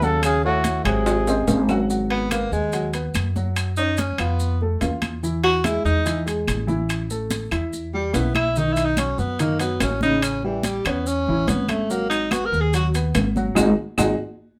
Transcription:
Already playing: D#2
0.02 C#3 F#3 F#4 A4 F#5, high conga, maracas
0.23 C#3 G#4, high conga, high timbale, claves, maracas
0.44 A2 A3 F#4 A4 C#5, high conga
0.64 high conga, high timbale, maracas
0.85 G#1 C3 F#3 F#4 G#4 F#5, high conga, high timbale, claves, maracas
1.06 high conga, high timbale, maracas
1.27 C4 C5 D#5, high conga, low timbale, maracas
1.48 G#1, high conga, low timbale, maracas
1.69 F#3 F#4 F#5, high conga, low timbale, claves, maracas
1.90 F#3 F#4, high conga, maracas
2.10 B3, high conga, high timbale
2.31 A#3 B3 B4, high conga, high timbale, claves, maracas
2.51 D#2 G#3, high conga, maracas
2.72 F#3 F#4, high conga, high timbale, maracas
2.93 B3 B4, high conga, high timbale, maracas
3.14 F#2, high conga, high timbale, claves, maracas
3.36 F#3 F#4, high conga, maracas
3.56 high conga, high timbale, claves, maracas
3.77 C#4 D#4 C#5, high conga, maracas
3.97 C#4, high conga, high timbale, maracas
4.18 F2 B3 F4 F5, high conga, high timbale, claves, maracas
4.40 high conga, maracas
4.61 A3 A4, high conga
4.81 E2 F4 F5, high conga, high timbale, low timbale, maracas
5.02 high conga, high timbale, claves, maracas
5.23 E3 E4, high conga, maracas
5.44 F#4, high conga, high timbale
5.64 G#3 E4 G#4, high conga, high timbale, claves, maracas
5.85 E2 D#4, high conga, maracas
6.06 E3 E4, high conga, high timbale, maracas
6.26 G#3 G#4, high conga, high timbale, maracas
6.48 A1, high conga, high timbale, claves, maracas
6.67 E3 E4, high conga, maracas
6.89 high conga, high timbale, claves, maracas
7.10 A3 A4, high conga, maracas
7.31 high conga, high timbale, maracas
7.51 E2 E4 E5, high conga, high timbale, claves, maracas
7.73 high conga, maracas
7.93 G3 G4, high conga
8.14 B1 B3 E4 E5, high conga, high timbale, low timbale, maracas
8.35 E4, high conga, high timbale, claves, maracas
8.55 D#3 D#4, high conga, maracas
8.73 E4, high conga, maracas
8.77 high timbale
8.85 D#4
8.97 F#3 C#4 F#4, high conga, high timbale, claves, maracas
9.18 F#2 B3, high conga, maracas
9.39 D#3 A#3 D#4, high conga, high timbale, maracas
9.60 F#3 B3 F#4, high conga, high timbale, maracas
9.80 A1 C#4, high conga, high timbale, low timbale, claves, maracas
10.01 C#3 C#4 D#4, high conga, maracas
10.22 C#4, high conga, high timbale, claves, maracas
10.43 E3 G3 G4, high conga
10.63 G3, high conga, high timbale, maracas
10.84 E2 B3 C#4 C#5, high conga, high timbale, claves, maracas
11.06 C#4, high conga, maracas
11.27 A1 E3 E4, high conga
11.47 G#1 B3 C#4 C#5, high conga, high timbale, maracas
11.68 A3, high conga, high timbale, claves, maracas
11.90 F#3 A#3 F#4, high conga, maracas
12.10 D#4, high conga, high timbale, maracas
12.31 B3 F#4 B4, high conga, high timbale, claves, maracas
12.45 A#4
12.52 D#2, high conga, maracas
12.61 G#4
12.73 F#3 F#4, high conga, high timbale, maracas
12.94 B3 B4, high conga, high timbale, maracas
13.15 G#1, high conga, high timbale, low timbale, claves, maracas
13.36 F#3 F#4, high conga, maracas
13.55 G#1 D#4 F#4 G#4, high conga, high timbale, claves, maracas
13.98 G#1 D#4 F#4 G#4, high conga, high timbale, claves, maracas

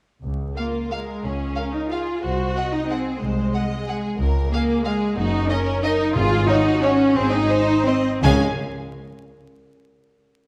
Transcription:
0.23 C#2
0.56 A#3 F4 F5
0.91 G#3 A#4 F5
1.23 C#2 C#4 G#4
1.56 A#4 F5
1.74 D#4
1.90 F4 G#4 F5
2.23 C2 F#4 C5
2.56 D#5 F#5
2.72 D#4
2.89 C4 G#4 F#5
3.20 C2 G#3 C5
3.54 D#5 F#5
3.87 G#4 F#5
4.19 C#2 A#4
4.51 A#3 G#4 F5
4.85 G#3 G#4 F5
5.17 F#1 D#4 F#4
5.49 C#4 A#4 D#5
5.83 D#4 A#4 D#5
6.15 G#1 G#2 F4 G#4
6.48 D#4 F#4 C#5
6.82 C#4 C#5
7.15 G#1 C4 G#4
7.32 D#4
7.49 C5
7.87 C4 C5 D#5
8.23 C#2 C#3 G#3 C#4 G#4 F5 G#5

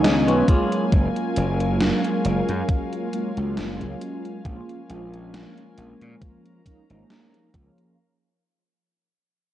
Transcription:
Already playing: D#3 G#3 B3 C#4 D#4 F4 C#5 G#5
0.04 C#2 D#5, snare, closed hi-hat
0.27 B1 C#4 F4 B4, closed hi-hat
0.47 F#3 G#3 A#3 C#4 F4 G#4 A#4 C#5 F5, kick, closed hi-hat
0.72 closed hi-hat
0.92 F#1, kick, closed hi-hat
1.16 closed hi-hat
1.36 F#1, closed hi-hat
1.60 closed hi-hat
1.80 snare, closed hi-hat
2.04 closed hi-hat
2.25 F#1, closed hi-hat
2.49 F#2, closed hi-hat
2.69 kick, closed hi-hat
2.93 closed hi-hat
3.12 F#3 G#3 A#3 C#4 F4, closed hi-hat
3.35 C#2 F#3 G#3 A#3 C#4 F4, closed hi-hat
3.57 F#1, snare, closed hi-hat
3.81 C#2, closed hi-hat
4.01 closed hi-hat
4.25 closed hi-hat
4.44 A#1 F3 G#3 A#3 C#4 F4 A#4 G#5, kick, closed hi-hat
4.69 closed hi-hat
4.88 A#1 F3 G#3 A#3 C#4 F4, closed hi-hat
5.14 closed hi-hat
5.34 snare, closed hi-hat
5.58 closed hi-hat
5.78 A#1, closed hi-hat
6.01 A#2, closed hi-hat
6.22 A#5, kick, closed hi-hat
6.46 closed hi-hat
6.65 F3 G#3 A#3 C#4 D#4, kick, closed hi-hat
6.89 G#1 F3 G#3 A#3 C#4 D#4, closed hi-hat
7.10 snare, closed hi-hat
7.34 closed hi-hat
7.54 C#2 F3 G#3 A#3 C#4 F4, kick, closed hi-hat
7.78 closed hi-hat

